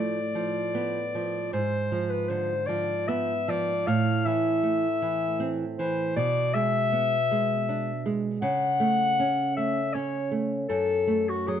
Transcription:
0, 0, Header, 1, 3, 480
1, 0, Start_track
1, 0, Key_signature, 0, "minor"
1, 0, Tempo, 783290
1, 938, Time_signature, 3, 2, 24, 8
1, 2371, Tempo, 766284
1, 3812, Key_signature, 3, "major"
1, 4291, Tempo, 752823
1, 6691, Tempo, 783290
1, 7244, End_track
2, 0, Start_track
2, 0, Title_t, "Clarinet"
2, 0, Program_c, 0, 71
2, 0, Note_on_c, 0, 74, 68
2, 934, Note_off_c, 0, 74, 0
2, 938, Note_on_c, 0, 72, 83
2, 1287, Note_on_c, 0, 71, 66
2, 1297, Note_off_c, 0, 72, 0
2, 1398, Note_on_c, 0, 72, 81
2, 1408, Note_off_c, 0, 71, 0
2, 1633, Note_on_c, 0, 74, 75
2, 1642, Note_off_c, 0, 72, 0
2, 1886, Note_on_c, 0, 76, 83
2, 1895, Note_off_c, 0, 74, 0
2, 2140, Note_on_c, 0, 74, 80
2, 2149, Note_off_c, 0, 76, 0
2, 2370, Note_on_c, 0, 77, 93
2, 2380, Note_off_c, 0, 74, 0
2, 2611, Note_on_c, 0, 76, 85
2, 2620, Note_off_c, 0, 77, 0
2, 3464, Note_off_c, 0, 76, 0
2, 3571, Note_on_c, 0, 72, 79
2, 3804, Note_off_c, 0, 72, 0
2, 3808, Note_on_c, 0, 74, 91
2, 4041, Note_on_c, 0, 76, 107
2, 4050, Note_off_c, 0, 74, 0
2, 5066, Note_off_c, 0, 76, 0
2, 5240, Note_on_c, 0, 78, 109
2, 5950, Note_off_c, 0, 78, 0
2, 5969, Note_on_c, 0, 76, 84
2, 6204, Note_on_c, 0, 73, 83
2, 6214, Note_off_c, 0, 76, 0
2, 6445, Note_off_c, 0, 73, 0
2, 6684, Note_on_c, 0, 69, 92
2, 7054, Note_on_c, 0, 66, 76
2, 7063, Note_off_c, 0, 69, 0
2, 7170, Note_on_c, 0, 68, 80
2, 7179, Note_off_c, 0, 66, 0
2, 7244, Note_off_c, 0, 68, 0
2, 7244, End_track
3, 0, Start_track
3, 0, Title_t, "Nylon-string guitar"
3, 0, Program_c, 1, 24
3, 0, Note_on_c, 1, 45, 50
3, 0, Note_on_c, 1, 53, 42
3, 0, Note_on_c, 1, 57, 40
3, 117, Note_off_c, 1, 53, 0
3, 214, Note_on_c, 1, 53, 46
3, 362, Note_off_c, 1, 57, 0
3, 457, Note_on_c, 1, 59, 48
3, 605, Note_off_c, 1, 53, 0
3, 703, Note_on_c, 1, 53, 42
3, 842, Note_off_c, 1, 59, 0
3, 912, Note_off_c, 1, 45, 0
3, 938, Note_off_c, 1, 53, 0
3, 938, Note_on_c, 1, 44, 59
3, 1175, Note_on_c, 1, 53, 47
3, 1408, Note_on_c, 1, 50, 45
3, 1548, Note_off_c, 1, 53, 0
3, 1646, Note_on_c, 1, 53, 51
3, 1791, Note_off_c, 1, 50, 0
3, 1890, Note_on_c, 1, 59, 54
3, 2037, Note_off_c, 1, 53, 0
3, 2134, Note_on_c, 1, 53, 47
3, 2278, Note_off_c, 1, 59, 0
3, 2348, Note_off_c, 1, 44, 0
3, 2372, Note_on_c, 1, 45, 65
3, 2373, Note_off_c, 1, 53, 0
3, 2614, Note_on_c, 1, 52, 52
3, 2850, Note_on_c, 1, 57, 53
3, 2995, Note_off_c, 1, 52, 0
3, 3092, Note_on_c, 1, 52, 51
3, 3233, Note_off_c, 1, 57, 0
3, 3328, Note_on_c, 1, 60, 60
3, 3478, Note_off_c, 1, 52, 0
3, 3575, Note_on_c, 1, 52, 53
3, 3715, Note_off_c, 1, 60, 0
3, 3787, Note_off_c, 1, 45, 0
3, 3809, Note_on_c, 1, 47, 67
3, 3813, Note_off_c, 1, 52, 0
3, 4047, Note_on_c, 1, 56, 52
3, 4286, Note_on_c, 1, 59, 54
3, 4436, Note_off_c, 1, 56, 0
3, 4533, Note_on_c, 1, 56, 55
3, 4674, Note_off_c, 1, 59, 0
3, 4772, Note_on_c, 1, 62, 57
3, 4909, Note_off_c, 1, 56, 0
3, 5007, Note_on_c, 1, 56, 50
3, 5146, Note_off_c, 1, 62, 0
3, 5214, Note_off_c, 1, 47, 0
3, 5238, Note_on_c, 1, 49, 75
3, 5243, Note_off_c, 1, 56, 0
3, 5480, Note_on_c, 1, 57, 57
3, 5733, Note_on_c, 1, 61, 58
3, 5877, Note_off_c, 1, 57, 0
3, 5973, Note_on_c, 1, 57, 55
3, 6118, Note_off_c, 1, 61, 0
3, 6213, Note_on_c, 1, 61, 60
3, 6353, Note_off_c, 1, 57, 0
3, 6446, Note_on_c, 1, 57, 51
3, 6594, Note_off_c, 1, 61, 0
3, 6664, Note_off_c, 1, 49, 0
3, 6689, Note_off_c, 1, 57, 0
3, 6689, Note_on_c, 1, 42, 71
3, 6921, Note_on_c, 1, 57, 54
3, 7169, Note_on_c, 1, 54, 53
3, 7244, Note_off_c, 1, 42, 0
3, 7244, Note_off_c, 1, 54, 0
3, 7244, Note_off_c, 1, 57, 0
3, 7244, End_track
0, 0, End_of_file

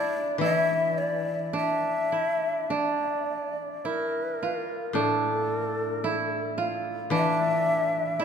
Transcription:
0, 0, Header, 1, 4, 480
1, 0, Start_track
1, 0, Tempo, 1140684
1, 165, Time_signature, 2, 2, 24, 8
1, 1611, Tempo, 1092896
1, 3552, End_track
2, 0, Start_track
2, 0, Title_t, "Shakuhachi"
2, 0, Program_c, 0, 77
2, 0, Note_on_c, 0, 74, 83
2, 156, Note_off_c, 0, 74, 0
2, 179, Note_on_c, 0, 76, 87
2, 413, Note_on_c, 0, 74, 76
2, 419, Note_off_c, 0, 76, 0
2, 647, Note_off_c, 0, 74, 0
2, 658, Note_on_c, 0, 76, 78
2, 1146, Note_on_c, 0, 74, 69
2, 1152, Note_off_c, 0, 76, 0
2, 1621, Note_on_c, 0, 70, 62
2, 1628, Note_off_c, 0, 74, 0
2, 2103, Note_off_c, 0, 70, 0
2, 2122, Note_on_c, 0, 69, 66
2, 2372, Note_off_c, 0, 69, 0
2, 2372, Note_on_c, 0, 70, 66
2, 2425, Note_off_c, 0, 70, 0
2, 2425, Note_on_c, 0, 69, 66
2, 2809, Note_off_c, 0, 69, 0
2, 3073, Note_on_c, 0, 76, 94
2, 3546, Note_off_c, 0, 76, 0
2, 3552, End_track
3, 0, Start_track
3, 0, Title_t, "Koto"
3, 0, Program_c, 1, 107
3, 0, Note_on_c, 1, 62, 72
3, 0, Note_on_c, 1, 64, 64
3, 172, Note_off_c, 1, 64, 0
3, 173, Note_on_c, 1, 64, 72
3, 644, Note_off_c, 1, 62, 0
3, 645, Note_on_c, 1, 62, 59
3, 891, Note_off_c, 1, 64, 0
3, 893, Note_on_c, 1, 64, 52
3, 1135, Note_off_c, 1, 62, 0
3, 1137, Note_on_c, 1, 62, 63
3, 1618, Note_off_c, 1, 64, 0
3, 1620, Note_on_c, 1, 64, 56
3, 1873, Note_on_c, 1, 65, 52
3, 1900, Note_off_c, 1, 64, 0
3, 2101, Note_off_c, 1, 62, 0
3, 2103, Note_on_c, 1, 62, 70
3, 2582, Note_on_c, 1, 64, 66
3, 2609, Note_off_c, 1, 65, 0
3, 2818, Note_on_c, 1, 65, 56
3, 2845, Note_off_c, 1, 64, 0
3, 3051, Note_off_c, 1, 62, 0
3, 3053, Note_on_c, 1, 62, 77
3, 3529, Note_on_c, 1, 64, 71
3, 3552, Note_off_c, 1, 62, 0
3, 3552, Note_off_c, 1, 64, 0
3, 3552, Note_off_c, 1, 65, 0
3, 3552, End_track
4, 0, Start_track
4, 0, Title_t, "Koto"
4, 0, Program_c, 2, 107
4, 161, Note_on_c, 2, 52, 44
4, 1583, Note_off_c, 2, 52, 0
4, 2096, Note_on_c, 2, 45, 42
4, 3049, Note_on_c, 2, 52, 46
4, 3530, Note_off_c, 2, 45, 0
4, 3552, Note_off_c, 2, 52, 0
4, 3552, End_track
0, 0, End_of_file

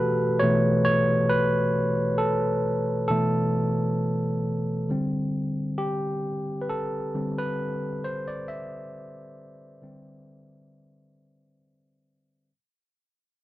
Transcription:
0, 0, Header, 1, 2, 480
1, 0, Start_track
1, 0, Tempo, 895522
1, 938, Time_signature, 4, 2, 24, 8
1, 7198, End_track
2, 0, Start_track
2, 0, Title_t, "Tine electric piano"
2, 0, Program_c, 0, 4
2, 0, Control_c, 0, 64, 127
2, 0, Note_on_c, 0, 47, 47
2, 0, Note_on_c, 0, 52, 44
2, 0, Note_on_c, 0, 57, 51
2, 0, Note_on_c, 0, 66, 75
2, 0, Note_on_c, 0, 67, 61
2, 0, Note_on_c, 0, 69, 85
2, 0, Note_on_c, 0, 71, 88
2, 191, Note_off_c, 0, 71, 0
2, 212, Note_on_c, 0, 73, 82
2, 227, Note_off_c, 0, 47, 0
2, 227, Note_off_c, 0, 52, 0
2, 227, Note_on_c, 0, 47, 42
2, 227, Note_on_c, 0, 52, 38
2, 230, Note_off_c, 0, 57, 0
2, 230, Note_on_c, 0, 57, 47
2, 438, Note_off_c, 0, 73, 0
2, 441, Note_off_c, 0, 47, 0
2, 441, Note_off_c, 0, 52, 0
2, 443, Note_off_c, 0, 57, 0
2, 454, Note_on_c, 0, 73, 88
2, 679, Note_off_c, 0, 73, 0
2, 694, Note_on_c, 0, 71, 85
2, 1169, Note_off_c, 0, 69, 0
2, 1169, Note_on_c, 0, 69, 78
2, 1191, Note_off_c, 0, 71, 0
2, 1644, Note_off_c, 0, 69, 0
2, 1651, Note_on_c, 0, 69, 74
2, 1661, Note_on_c, 0, 47, 50
2, 1663, Note_on_c, 0, 52, 47
2, 1667, Note_on_c, 0, 57, 55
2, 2353, Note_off_c, 0, 69, 0
2, 2358, Note_off_c, 0, 47, 0
2, 2359, Note_off_c, 0, 52, 0
2, 2361, Note_off_c, 0, 57, 0
2, 2623, Note_on_c, 0, 50, 46
2, 2625, Control_c, 0, 64, 0
2, 2627, Note_off_c, 0, 66, 0
2, 2628, Note_on_c, 0, 55, 45
2, 2630, Note_off_c, 0, 67, 0
2, 2632, Note_on_c, 0, 60, 51
2, 2717, Control_c, 0, 64, 127
2, 3098, Note_on_c, 0, 67, 72
2, 3319, Note_off_c, 0, 50, 0
2, 3321, Note_off_c, 0, 55, 0
2, 3324, Note_off_c, 0, 60, 0
2, 3546, Note_on_c, 0, 71, 57
2, 3557, Note_off_c, 0, 67, 0
2, 3579, Note_off_c, 0, 71, 0
2, 3588, Note_on_c, 0, 69, 79
2, 3829, Note_on_c, 0, 50, 41
2, 3831, Note_on_c, 0, 55, 40
2, 3835, Note_on_c, 0, 60, 47
2, 3932, Note_off_c, 0, 69, 0
2, 3959, Note_on_c, 0, 71, 83
2, 4042, Note_off_c, 0, 50, 0
2, 4043, Note_off_c, 0, 55, 0
2, 4045, Note_off_c, 0, 60, 0
2, 4312, Note_on_c, 0, 72, 81
2, 4314, Note_off_c, 0, 71, 0
2, 4426, Note_off_c, 0, 72, 0
2, 4436, Note_on_c, 0, 74, 74
2, 4483, Note_off_c, 0, 74, 0
2, 4546, Note_on_c, 0, 76, 80
2, 5263, Note_on_c, 0, 50, 49
2, 5266, Note_on_c, 0, 55, 42
2, 5270, Note_on_c, 0, 60, 50
2, 5959, Note_off_c, 0, 50, 0
2, 5961, Note_off_c, 0, 55, 0
2, 5963, Note_off_c, 0, 60, 0
2, 6201, Note_off_c, 0, 76, 0
2, 6704, Control_c, 0, 64, 0
2, 7198, End_track
0, 0, End_of_file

